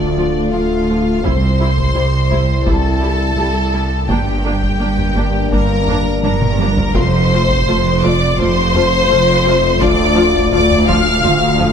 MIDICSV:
0, 0, Header, 1, 9, 480
1, 0, Start_track
1, 0, Key_signature, -1, "minor"
1, 0, Tempo, 714286
1, 833, Time_signature, 4, 2, 24, 8
1, 7880, End_track
2, 0, Start_track
2, 0, Title_t, "Violin section"
2, 0, Program_c, 0, 48
2, 0, Note_on_c, 0, 74, 80
2, 350, Note_on_c, 0, 77, 78
2, 352, Note_off_c, 0, 74, 0
2, 822, Note_off_c, 0, 77, 0
2, 829, Note_on_c, 0, 84, 92
2, 1791, Note_off_c, 0, 84, 0
2, 1791, Note_on_c, 0, 81, 101
2, 2752, Note_off_c, 0, 81, 0
2, 2755, Note_on_c, 0, 79, 85
2, 3714, Note_off_c, 0, 79, 0
2, 3716, Note_on_c, 0, 82, 99
2, 4181, Note_off_c, 0, 82, 0
2, 4189, Note_on_c, 0, 82, 97
2, 4662, Note_off_c, 0, 82, 0
2, 4676, Note_on_c, 0, 84, 107
2, 5394, Note_on_c, 0, 86, 106
2, 5395, Note_off_c, 0, 84, 0
2, 5633, Note_off_c, 0, 86, 0
2, 5634, Note_on_c, 0, 84, 119
2, 6591, Note_on_c, 0, 86, 123
2, 6594, Note_off_c, 0, 84, 0
2, 7063, Note_off_c, 0, 86, 0
2, 7071, Note_on_c, 0, 86, 117
2, 7307, Note_off_c, 0, 86, 0
2, 7317, Note_on_c, 0, 89, 121
2, 7880, Note_off_c, 0, 89, 0
2, 7880, End_track
3, 0, Start_track
3, 0, Title_t, "Violin section"
3, 0, Program_c, 1, 48
3, 0, Note_on_c, 1, 62, 55
3, 350, Note_off_c, 1, 62, 0
3, 355, Note_on_c, 1, 65, 59
3, 834, Note_off_c, 1, 65, 0
3, 834, Note_on_c, 1, 72, 78
3, 1775, Note_off_c, 1, 72, 0
3, 1792, Note_on_c, 1, 69, 80
3, 2746, Note_on_c, 1, 67, 64
3, 2752, Note_off_c, 1, 69, 0
3, 3690, Note_off_c, 1, 67, 0
3, 3709, Note_on_c, 1, 70, 83
3, 4181, Note_off_c, 1, 70, 0
3, 4198, Note_on_c, 1, 70, 75
3, 4666, Note_off_c, 1, 70, 0
3, 4680, Note_on_c, 1, 72, 98
3, 5397, Note_off_c, 1, 72, 0
3, 5401, Note_on_c, 1, 74, 92
3, 5637, Note_off_c, 1, 74, 0
3, 5642, Note_on_c, 1, 72, 115
3, 6595, Note_on_c, 1, 74, 109
3, 6597, Note_off_c, 1, 72, 0
3, 7062, Note_off_c, 1, 74, 0
3, 7070, Note_on_c, 1, 74, 109
3, 7307, Note_off_c, 1, 74, 0
3, 7312, Note_on_c, 1, 77, 106
3, 7880, Note_off_c, 1, 77, 0
3, 7880, End_track
4, 0, Start_track
4, 0, Title_t, "French horn section"
4, 0, Program_c, 2, 60
4, 0, Note_on_c, 2, 57, 79
4, 0, Note_on_c, 2, 65, 78
4, 807, Note_off_c, 2, 65, 0
4, 808, Note_off_c, 2, 57, 0
4, 843, Note_on_c, 2, 64, 71
4, 844, Note_on_c, 2, 55, 73
4, 2639, Note_off_c, 2, 55, 0
4, 2639, Note_off_c, 2, 64, 0
4, 2753, Note_on_c, 2, 58, 81
4, 2753, Note_on_c, 2, 62, 88
4, 4646, Note_off_c, 2, 58, 0
4, 4646, Note_off_c, 2, 62, 0
4, 4672, Note_on_c, 2, 57, 85
4, 4674, Note_on_c, 2, 65, 88
4, 7880, Note_off_c, 2, 57, 0
4, 7880, Note_off_c, 2, 65, 0
4, 7880, End_track
5, 0, Start_track
5, 0, Title_t, "Viola section"
5, 0, Program_c, 3, 48
5, 119, Note_on_c, 3, 53, 44
5, 121, Note_on_c, 3, 65, 46
5, 173, Note_off_c, 3, 53, 0
5, 175, Note_off_c, 3, 65, 0
5, 354, Note_on_c, 3, 53, 47
5, 355, Note_on_c, 3, 65, 45
5, 408, Note_off_c, 3, 53, 0
5, 409, Note_off_c, 3, 65, 0
5, 600, Note_on_c, 3, 65, 48
5, 604, Note_on_c, 3, 53, 48
5, 654, Note_off_c, 3, 65, 0
5, 658, Note_off_c, 3, 53, 0
5, 835, Note_on_c, 3, 55, 57
5, 835, Note_on_c, 3, 64, 50
5, 888, Note_off_c, 3, 64, 0
5, 889, Note_off_c, 3, 55, 0
5, 1076, Note_on_c, 3, 55, 57
5, 1077, Note_on_c, 3, 64, 58
5, 1130, Note_off_c, 3, 55, 0
5, 1130, Note_off_c, 3, 64, 0
5, 1309, Note_on_c, 3, 55, 51
5, 1311, Note_on_c, 3, 64, 46
5, 1363, Note_off_c, 3, 55, 0
5, 1365, Note_off_c, 3, 64, 0
5, 1552, Note_on_c, 3, 64, 56
5, 1556, Note_on_c, 3, 55, 48
5, 1606, Note_off_c, 3, 64, 0
5, 1610, Note_off_c, 3, 55, 0
5, 1784, Note_on_c, 3, 64, 48
5, 1786, Note_on_c, 3, 55, 51
5, 1838, Note_off_c, 3, 64, 0
5, 1839, Note_off_c, 3, 55, 0
5, 2032, Note_on_c, 3, 64, 50
5, 2034, Note_on_c, 3, 55, 49
5, 2085, Note_off_c, 3, 64, 0
5, 2088, Note_off_c, 3, 55, 0
5, 2270, Note_on_c, 3, 64, 52
5, 2271, Note_on_c, 3, 55, 53
5, 2324, Note_off_c, 3, 64, 0
5, 2325, Note_off_c, 3, 55, 0
5, 2514, Note_on_c, 3, 64, 51
5, 2515, Note_on_c, 3, 55, 44
5, 2568, Note_off_c, 3, 55, 0
5, 2568, Note_off_c, 3, 64, 0
5, 2754, Note_on_c, 3, 62, 56
5, 2757, Note_on_c, 3, 58, 59
5, 2808, Note_off_c, 3, 62, 0
5, 2811, Note_off_c, 3, 58, 0
5, 2988, Note_on_c, 3, 58, 59
5, 2988, Note_on_c, 3, 62, 65
5, 3042, Note_off_c, 3, 58, 0
5, 3042, Note_off_c, 3, 62, 0
5, 3224, Note_on_c, 3, 58, 54
5, 3226, Note_on_c, 3, 62, 55
5, 3277, Note_off_c, 3, 58, 0
5, 3280, Note_off_c, 3, 62, 0
5, 3470, Note_on_c, 3, 62, 54
5, 3472, Note_on_c, 3, 58, 55
5, 3524, Note_off_c, 3, 62, 0
5, 3526, Note_off_c, 3, 58, 0
5, 3713, Note_on_c, 3, 62, 52
5, 3715, Note_on_c, 3, 58, 57
5, 3766, Note_off_c, 3, 62, 0
5, 3768, Note_off_c, 3, 58, 0
5, 3955, Note_on_c, 3, 58, 57
5, 3957, Note_on_c, 3, 62, 62
5, 4009, Note_off_c, 3, 58, 0
5, 4011, Note_off_c, 3, 62, 0
5, 4194, Note_on_c, 3, 58, 59
5, 4196, Note_on_c, 3, 62, 64
5, 4248, Note_off_c, 3, 58, 0
5, 4250, Note_off_c, 3, 62, 0
5, 4439, Note_on_c, 3, 58, 58
5, 4441, Note_on_c, 3, 62, 59
5, 4493, Note_off_c, 3, 58, 0
5, 4494, Note_off_c, 3, 62, 0
5, 4674, Note_on_c, 3, 57, 72
5, 4676, Note_on_c, 3, 65, 71
5, 4728, Note_off_c, 3, 57, 0
5, 4730, Note_off_c, 3, 65, 0
5, 4924, Note_on_c, 3, 65, 67
5, 4926, Note_on_c, 3, 57, 66
5, 4978, Note_off_c, 3, 65, 0
5, 4980, Note_off_c, 3, 57, 0
5, 5158, Note_on_c, 3, 57, 65
5, 5158, Note_on_c, 3, 65, 64
5, 5211, Note_off_c, 3, 57, 0
5, 5212, Note_off_c, 3, 65, 0
5, 5395, Note_on_c, 3, 65, 71
5, 5397, Note_on_c, 3, 57, 67
5, 5449, Note_off_c, 3, 65, 0
5, 5451, Note_off_c, 3, 57, 0
5, 5638, Note_on_c, 3, 57, 57
5, 5640, Note_on_c, 3, 65, 64
5, 5692, Note_off_c, 3, 57, 0
5, 5694, Note_off_c, 3, 65, 0
5, 5875, Note_on_c, 3, 57, 68
5, 5875, Note_on_c, 3, 65, 66
5, 5929, Note_off_c, 3, 57, 0
5, 5929, Note_off_c, 3, 65, 0
5, 6112, Note_on_c, 3, 57, 64
5, 6113, Note_on_c, 3, 65, 67
5, 6166, Note_off_c, 3, 57, 0
5, 6166, Note_off_c, 3, 65, 0
5, 6353, Note_on_c, 3, 57, 64
5, 6353, Note_on_c, 3, 65, 72
5, 6407, Note_off_c, 3, 57, 0
5, 6407, Note_off_c, 3, 65, 0
5, 6590, Note_on_c, 3, 53, 75
5, 6591, Note_on_c, 3, 65, 87
5, 6643, Note_off_c, 3, 53, 0
5, 6645, Note_off_c, 3, 65, 0
5, 6822, Note_on_c, 3, 65, 84
5, 6823, Note_on_c, 3, 53, 81
5, 6875, Note_off_c, 3, 65, 0
5, 6877, Note_off_c, 3, 53, 0
5, 7070, Note_on_c, 3, 65, 73
5, 7071, Note_on_c, 3, 53, 68
5, 7124, Note_off_c, 3, 53, 0
5, 7124, Note_off_c, 3, 65, 0
5, 7310, Note_on_c, 3, 53, 77
5, 7311, Note_on_c, 3, 65, 78
5, 7364, Note_off_c, 3, 53, 0
5, 7365, Note_off_c, 3, 65, 0
5, 7550, Note_on_c, 3, 53, 71
5, 7551, Note_on_c, 3, 65, 80
5, 7604, Note_off_c, 3, 53, 0
5, 7604, Note_off_c, 3, 65, 0
5, 7790, Note_on_c, 3, 53, 75
5, 7791, Note_on_c, 3, 65, 72
5, 7844, Note_off_c, 3, 53, 0
5, 7844, Note_off_c, 3, 65, 0
5, 7880, End_track
6, 0, Start_track
6, 0, Title_t, "Cello section"
6, 0, Program_c, 4, 48
6, 0, Note_on_c, 4, 38, 55
6, 297, Note_off_c, 4, 38, 0
6, 351, Note_on_c, 4, 38, 61
6, 775, Note_off_c, 4, 38, 0
6, 827, Note_on_c, 4, 36, 59
6, 1253, Note_off_c, 4, 36, 0
6, 1312, Note_on_c, 4, 36, 60
6, 1736, Note_off_c, 4, 36, 0
6, 1790, Note_on_c, 4, 36, 66
6, 2215, Note_off_c, 4, 36, 0
6, 2267, Note_on_c, 4, 36, 71
6, 2693, Note_off_c, 4, 36, 0
6, 2747, Note_on_c, 4, 43, 72
6, 3173, Note_off_c, 4, 43, 0
6, 3230, Note_on_c, 4, 43, 70
6, 3655, Note_off_c, 4, 43, 0
6, 3709, Note_on_c, 4, 43, 70
6, 4134, Note_off_c, 4, 43, 0
6, 4191, Note_on_c, 4, 43, 82
6, 4615, Note_off_c, 4, 43, 0
6, 4673, Note_on_c, 4, 41, 83
6, 5097, Note_off_c, 4, 41, 0
6, 5156, Note_on_c, 4, 41, 82
6, 5578, Note_off_c, 4, 41, 0
6, 5637, Note_on_c, 4, 41, 82
6, 6059, Note_off_c, 4, 41, 0
6, 6113, Note_on_c, 4, 41, 99
6, 6537, Note_off_c, 4, 41, 0
6, 6591, Note_on_c, 4, 38, 89
6, 7015, Note_off_c, 4, 38, 0
6, 7073, Note_on_c, 4, 38, 90
6, 7497, Note_off_c, 4, 38, 0
6, 7550, Note_on_c, 4, 38, 101
6, 7880, Note_off_c, 4, 38, 0
6, 7880, End_track
7, 0, Start_track
7, 0, Title_t, "Double bass section"
7, 0, Program_c, 5, 48
7, 0, Note_on_c, 5, 38, 65
7, 296, Note_off_c, 5, 38, 0
7, 357, Note_on_c, 5, 38, 51
7, 779, Note_off_c, 5, 38, 0
7, 833, Note_on_c, 5, 36, 65
7, 1257, Note_off_c, 5, 36, 0
7, 1312, Note_on_c, 5, 36, 62
7, 1736, Note_off_c, 5, 36, 0
7, 1790, Note_on_c, 5, 36, 69
7, 2215, Note_off_c, 5, 36, 0
7, 2275, Note_on_c, 5, 36, 54
7, 2697, Note_off_c, 5, 36, 0
7, 2758, Note_on_c, 5, 31, 69
7, 3179, Note_off_c, 5, 31, 0
7, 3234, Note_on_c, 5, 31, 64
7, 3657, Note_off_c, 5, 31, 0
7, 3713, Note_on_c, 5, 31, 81
7, 4137, Note_off_c, 5, 31, 0
7, 4194, Note_on_c, 5, 31, 72
7, 4617, Note_off_c, 5, 31, 0
7, 4670, Note_on_c, 5, 29, 91
7, 5095, Note_off_c, 5, 29, 0
7, 5153, Note_on_c, 5, 29, 81
7, 5577, Note_off_c, 5, 29, 0
7, 5634, Note_on_c, 5, 29, 87
7, 6057, Note_off_c, 5, 29, 0
7, 6113, Note_on_c, 5, 29, 74
7, 6536, Note_off_c, 5, 29, 0
7, 6595, Note_on_c, 5, 38, 102
7, 7018, Note_off_c, 5, 38, 0
7, 7072, Note_on_c, 5, 38, 102
7, 7496, Note_off_c, 5, 38, 0
7, 7549, Note_on_c, 5, 38, 101
7, 7880, Note_off_c, 5, 38, 0
7, 7880, End_track
8, 0, Start_track
8, 0, Title_t, "Sub bass"
8, 0, Program_c, 6, 38
8, 0, Note_on_c, 6, 26, 64
8, 834, Note_on_c, 6, 36, 61
8, 845, Note_off_c, 6, 26, 0
8, 2750, Note_on_c, 6, 31, 74
8, 2760, Note_off_c, 6, 36, 0
8, 4672, Note_on_c, 6, 29, 77
8, 4682, Note_off_c, 6, 31, 0
8, 6592, Note_on_c, 6, 26, 76
8, 6602, Note_off_c, 6, 29, 0
8, 7880, Note_off_c, 6, 26, 0
8, 7880, End_track
9, 0, Start_track
9, 0, Title_t, "Taiko and cinematic ensemble drums"
9, 834, Note_on_c, 9, 41, 88
9, 901, Note_off_c, 9, 41, 0
9, 1194, Note_on_c, 9, 41, 71
9, 1261, Note_off_c, 9, 41, 0
9, 1554, Note_on_c, 9, 41, 63
9, 1621, Note_off_c, 9, 41, 0
9, 1793, Note_on_c, 9, 41, 88
9, 1861, Note_off_c, 9, 41, 0
9, 2749, Note_on_c, 9, 41, 93
9, 2816, Note_off_c, 9, 41, 0
9, 3108, Note_on_c, 9, 41, 70
9, 3176, Note_off_c, 9, 41, 0
9, 3347, Note_on_c, 9, 45, 52
9, 3414, Note_off_c, 9, 45, 0
9, 3469, Note_on_c, 9, 41, 73
9, 3536, Note_off_c, 9, 41, 0
9, 3711, Note_on_c, 9, 41, 81
9, 3778, Note_off_c, 9, 41, 0
9, 3947, Note_on_c, 9, 45, 65
9, 4014, Note_off_c, 9, 45, 0
9, 4189, Note_on_c, 9, 48, 84
9, 4256, Note_off_c, 9, 48, 0
9, 4310, Note_on_c, 9, 47, 96
9, 4378, Note_off_c, 9, 47, 0
9, 4428, Note_on_c, 9, 48, 89
9, 4495, Note_off_c, 9, 48, 0
9, 4550, Note_on_c, 9, 43, 98
9, 4617, Note_off_c, 9, 43, 0
9, 4669, Note_on_c, 9, 41, 96
9, 4736, Note_off_c, 9, 41, 0
9, 5033, Note_on_c, 9, 41, 84
9, 5100, Note_off_c, 9, 41, 0
9, 5275, Note_on_c, 9, 45, 57
9, 5342, Note_off_c, 9, 45, 0
9, 5397, Note_on_c, 9, 41, 79
9, 5464, Note_off_c, 9, 41, 0
9, 5636, Note_on_c, 9, 41, 87
9, 5703, Note_off_c, 9, 41, 0
9, 5879, Note_on_c, 9, 45, 63
9, 5946, Note_off_c, 9, 45, 0
9, 6596, Note_on_c, 9, 41, 101
9, 6663, Note_off_c, 9, 41, 0
9, 6956, Note_on_c, 9, 41, 78
9, 7023, Note_off_c, 9, 41, 0
9, 7195, Note_on_c, 9, 45, 61
9, 7262, Note_off_c, 9, 45, 0
9, 7318, Note_on_c, 9, 41, 83
9, 7385, Note_off_c, 9, 41, 0
9, 7555, Note_on_c, 9, 41, 90
9, 7623, Note_off_c, 9, 41, 0
9, 7794, Note_on_c, 9, 45, 64
9, 7861, Note_off_c, 9, 45, 0
9, 7880, End_track
0, 0, End_of_file